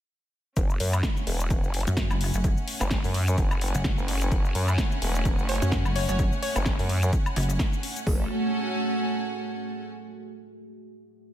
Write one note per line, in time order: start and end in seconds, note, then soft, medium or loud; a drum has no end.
0.57 0.78 F#1 loud
0.57 8.03 A3 medium
0.57 8.06 C#4 medium
0.57 8.03 F#4 medium
0.57 8.03 G#4 medium
0.57 kick loud
0.57 closed hi-hat medium
0.57 shaker medium
0.70 8.07 A3 medium
0.70 shaker soft
0.80 1.02 F#2 loud
0.80 open hi-hat loud
0.90 8.07 F#5 medium
0.90 closed hi-hat medium
0.90 high woodblock medium
0.90 shaker medium
1.03 kick loud
1.03 snare loud
1.03 closed hi-hat medium
1.03 shaker medium
1.17 8.07 G#5 medium
1.17 shaker soft
1.27 1.62 E1 loud
1.27 open hi-hat loud
1.40 closed hi-hat medium
1.40 shaker medium
1.50 kick loud
1.50 closed hi-hat medium
1.50 shaker medium
1.64 1.85 F#1 loud
1.64 shaker soft
1.74 open hi-hat loud
1.81 closed hi-hat medium
1.87 2.08 F#2 medium
1.87 closed hi-hat medium
1.87 shaker medium
1.97 kick loud
1.97 snare loud
1.97 closed hi-hat medium
1.97 shaker medium
2.11 2.32 F#1 loud
2.11 high woodblock medium
2.11 shaker soft
2.21 open hi-hat loud
2.34 2.55 F#1 medium
2.34 closed hi-hat medium
2.34 shaker medium
2.44 kick loud
2.44 closed hi-hat medium
2.44 shaker medium
2.57 shaker soft
2.68 open hi-hat loud
2.80 3.02 F#1 loud
2.80 snare soft
2.80 closed hi-hat medium
2.80 high woodblock medium
2.80 shaker medium
2.91 kick loud
2.91 snare loud
2.91 closed hi-hat medium
2.91 shaker medium
3.04 3.36 F#2 loud
3.04 open hi-hat medium
3.04 shaker soft
3.14 open hi-hat loud
3.28 closed hi-hat medium
3.28 shaker medium
3.38 3.73 F#1 loud
3.38 kick loud
3.38 closed hi-hat medium
3.38 shaker medium
3.51 high woodblock medium
3.51 shaker soft
3.61 open hi-hat loud
3.68 closed hi-hat medium
3.75 3.96 F#1 loud
3.75 closed hi-hat medium
3.75 shaker medium
3.84 kick loud
3.84 snare loud
3.84 closed hi-hat medium
3.84 shaker medium
3.98 4.30 F#1 loud
3.98 shaker soft
4.08 open hi-hat loud
4.21 closed hi-hat medium
4.21 shaker medium
4.32 4.53 F#1 loud
4.32 kick loud
4.32 closed hi-hat medium
4.32 shaker medium
4.45 shaker soft
4.55 4.77 F#2 loud
4.55 open hi-hat loud
4.68 closed hi-hat medium
4.68 high woodblock medium
4.68 shaker medium
4.78 kick loud
4.78 snare loud
4.78 closed hi-hat medium
4.78 shaker medium
4.92 shaker soft
5.02 5.37 E1 loud
5.02 open hi-hat loud
5.15 closed hi-hat medium
5.15 shaker medium
5.25 kick loud
5.25 closed hi-hat medium
5.25 shaker medium
5.39 5.60 F#1 loud
5.39 shaker soft
5.49 5.65 C#5 medium
5.49 open hi-hat loud
5.55 closed hi-hat medium
5.62 5.83 F#2 loud
5.62 closed hi-hat medium
5.62 shaker medium
5.72 kick loud
5.72 snare loud
5.72 closed hi-hat medium
5.72 shaker medium
5.85 6.07 F#1 medium
5.85 high woodblock medium
5.85 shaker soft
5.96 6.04 C#5 medium
5.96 open hi-hat loud
6.09 6.30 F#1 medium
6.09 6.15 C#5 medium
6.09 closed hi-hat medium
6.09 shaker medium
6.19 kick loud
6.19 closed hi-hat medium
6.19 shaker medium
6.32 shaker soft
6.42 6.79 C#5 loud
6.42 open hi-hat loud
6.55 6.77 F#1 loud
6.55 snare soft
6.55 closed hi-hat medium
6.55 high woodblock medium
6.55 shaker medium
6.66 kick loud
6.66 snare loud
6.66 closed hi-hat medium
6.66 shaker medium
6.79 7.11 F#2 loud
6.79 open hi-hat medium
6.79 shaker soft
6.89 open hi-hat loud
7.03 closed hi-hat soft
7.03 shaker medium
7.13 kick loud
7.13 closed hi-hat medium
7.13 shaker medium
7.26 high woodblock medium
7.26 shaker soft
7.36 7.58 F#1 loud
7.36 open hi-hat loud
7.43 closed hi-hat medium
7.50 closed hi-hat soft
7.50 shaker medium
7.59 kick loud
7.59 snare loud
7.59 closed hi-hat medium
7.59 shaker medium
7.73 shaker soft
7.83 open hi-hat loud
7.97 closed hi-hat medium
7.97 shaker medium
8.07 8.28 F#1 loud
8.07 9.90 C#4 medium
8.07 kick loud
8.07 open hi-hat medium
8.15 9.90 A4 medium
8.22 9.90 F#5 medium
8.28 9.90 G#5 medium